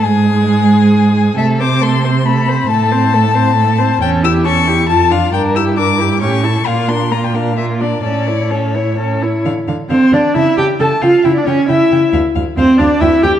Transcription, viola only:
X:1
M:3/4
L:1/16
Q:1/4=135
K:C
V:1 name="Viola"
^G,12 | A,2 C2 A,2 C2 A,2 C2 | A,2 C2 A,2 C2 A,2 C2 | [K:Dm] ^C2 E2 C2 E2 F2 D2 |
D2 E2 D2 E2 ^C2 E2 | B,2 D2 B,2 D2 B,2 D2 | ^C2 E2 C2 E2 C2 E2 | z4 C2 D2 E2 G2 |
A2 F2 E D ^C2 E4 | z4 C2 D2 E2 G2 |]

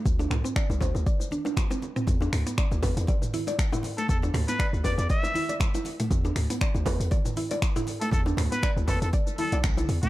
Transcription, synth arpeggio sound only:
X:1
M:4/4
L:1/16
Q:"Swing 16ths" 1/4=119
K:Ephr
V:1 name="Synth arpeggio sound"
z D z C d z c z d z D D z C z C | z D z B, d z B z d z E d z E z A, | z D z B, d z B z d z E d z E z A, | z D z B, d z B z d z E d z E z A, |
z D z B, d z B z d z E d z E z A, |]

